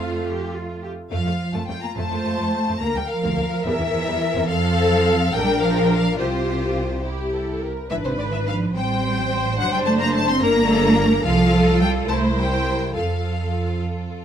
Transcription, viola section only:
0.00 0.89 A3 medium
0.00 0.89 F4 medium
1.97 2.78 C5 medium
2.81 4.46 A#4 medium
4.49 5.34 A4 loud
5.34 6.19 A#4 loud
6.19 6.98 G4 medium
7.05 7.31 G4 medium
7.33 7.62 A4 medium
7.62 7.91 A#4 medium
7.91 8.71 B4 medium
8.76 10.39 C5 loud
10.42 10.69 A#4 loud
10.69 10.97 A4 loud
10.97 11.24 A#4 loud
11.24 12.08 A4 loud
12.09 12.96 C5 loud
12.95 14.23 A4 medium

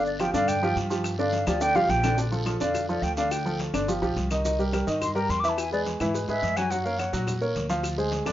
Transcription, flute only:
0.06 0.22 D5 medium
0.20 0.34 G5 loud
0.34 0.50 F5 loud
0.48 0.76 G5 loud
1.19 1.49 F5 medium
1.47 1.63 D5 loud
1.61 1.77 G5 loud
1.76 1.91 F5 loud
1.90 2.18 G5 loud
2.60 2.87 F5 medium
2.89 3.04 D5 medium
3.03 3.16 G5 loud
3.17 3.33 F5 loud
3.31 3.60 G5 medium
5.02 5.15 C6 loud
5.16 5.32 A#5 loud
5.30 5.42 C6 loud
5.40 5.51 D6 loud
5.49 5.60 A5 medium
5.59 5.72 G#5 medium
5.73 5.81 D5 medium
6.29 6.58 E5 medium
6.57 6.72 G#5 loud
6.71 6.86 F#5 medium
6.84 7.00 F5 medium
6.98 7.13 F#5 medium

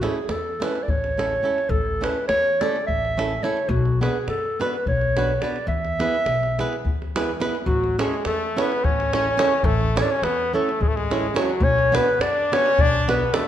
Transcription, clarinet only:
0.05 0.33 G#4 medium
0.32 0.65 A4 medium
0.64 0.85 B4 medium
0.83 0.92 D5 medium
0.90 1.71 C#5 medium
1.70 2.05 A4 loud
2.03 2.27 B4 medium
2.28 2.62 C#5 loud
2.61 2.86 D5 medium
2.87 3.45 E5 loud
3.44 3.71 C#5 medium
3.69 4.01 F#4 medium
4.02 4.26 G#4 medium
4.29 4.62 A4 medium
4.61 4.87 B4 medium
4.88 5.43 C#5 medium
5.42 5.67 D5 medium
5.68 7.11 E5 loud
7.66 7.96 F#4 medium
8.00 8.23 G#4 medium
8.26 8.61 A4 medium
8.60 8.86 B4 medium
8.85 9.67 C#5 medium
9.65 10.00 A4 medium
9.99 10.04 C#5 medium
10.03 10.12 D5 medium
10.11 10.25 C#5 medium
10.23 10.54 B4 loud
10.54 10.83 A4 loud
10.82 10.90 G#4 medium
10.89 10.98 A4 medium
10.97 11.36 G#4 medium
11.38 11.65 F#4 loud
11.64 11.95 C#5 loud
11.96 12.23 B4 loud
12.21 12.55 D5 loud
12.54 12.82 C#5 loud
12.81 13.09 D5 loud
13.09 13.35 B4 medium
13.34 13.48 A4 medium

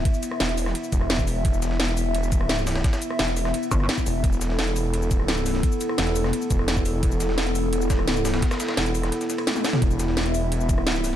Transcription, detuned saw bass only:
0.40 0.74 E1 loud
0.92 1.43 E1 loud
1.45 2.45 E1 loud
2.45 2.67 D1 loud
2.67 2.83 C1 loud
3.19 3.53 E1 loud
4.06 4.22 E1 loud
4.24 5.24 E1 loud
5.24 5.46 D1 loud
5.46 5.62 C1 loud
5.98 6.32 E1 loud
6.51 7.01 E1 loud
7.03 8.03 E1 medium
8.03 8.25 D1 medium
8.25 8.41 C1 medium
8.77 9.11 E1 loud
9.82 10.82 E1 loud
10.82 11.04 D1 loud
11.04 11.16 C1 loud

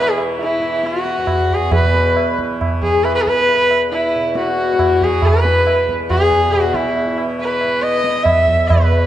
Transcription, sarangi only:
0.00 0.11 B4 medium
0.10 0.19 G#4 medium
0.41 0.88 E4 medium
0.86 1.55 F#4 medium
1.54 1.74 G#4 medium
1.74 2.35 B4 medium
2.83 3.05 G#4 medium
3.04 3.14 B4 medium
3.15 3.23 B4 medium
3.21 3.30 G#4 medium
3.28 3.81 B4 loud
3.92 4.33 E4 medium
4.37 5.05 F#4 medium
5.03 5.28 G#4 medium
5.26 5.90 B4 medium
6.10 6.53 G#4 loud
6.52 6.76 F#4 medium
6.74 7.19 E4 medium
7.41 7.84 B4 medium
7.82 8.25 D#5 medium
8.23 8.69 E5 medium
8.68 9.06 B4 medium

